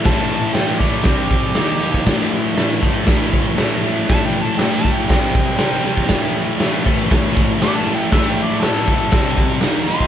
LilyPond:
<<
  \new Staff \with { instrumentName = "Harmonica" } { \time 4/4 \key a \minor \tempo 4 = 119 a''4 g''8 d''8 g'2~ | g'4 r2. | \tuplet 3/2 { a''8 g''8 a''8 g''8 a''8 g''8 } g''2~ | g''4 r2 \tuplet 3/2 { d'''8 a''8 g''8 } |
\tuplet 3/2 { e''8 g''8 d''8 } a'2 r8 c'''8 | }
  \new Staff \with { instrumentName = "Distorted electric guitar" } { \clef bass \time 4/4 \key a \minor <a, e a>4 <a, e a>8 <a, e a>8 <c g c'>4 <dis ais dis'>8 <dis ais dis'>8 | <a, e a>4 <a, e a>8 <a, e a>8 <a, e a>4 <a, e a>8 <a, e a>8 | <a, e a>4 <a, e a>8 <a, e a>8 <c g c'>4 <c g c'>8 <c g c'>8 | <a, e a>4 <a, e a>8 <a, e a>8 <a, e a>4 <a, e a>8 <a, e a>8 |
<a, e a>4 <a, e a>8 <a, e a>8 <c g c'>4 <dis ais dis'>8 <dis ais dis'>8 | }
  \new DrumStaff \with { instrumentName = "Drums" } \drummode { \time 4/4 <cymc bd sn>4 <cymc sn>8 bd8 <cymc bd sn>8 bd8 <cymc sn>8. bd16 | <cymc bd sn>4 <cymc sn>8 bd8 <cymc bd sn>8 bd8 <cymc sn>4 | <cymc bd sn>4 <cymc sn>8 bd8 <cymc bd sn>8 bd8 <cymc sn>8. bd16 | <cymc bd sn>4 <cymc sn>8 bd8 <cymc bd sn>8 bd8 <cymc sn>4 |
<cymc bd sn>4 <cymc sn>8 bd8 <cymc bd sn>8 bd8 <cymc sn>8. bd16 | }
>>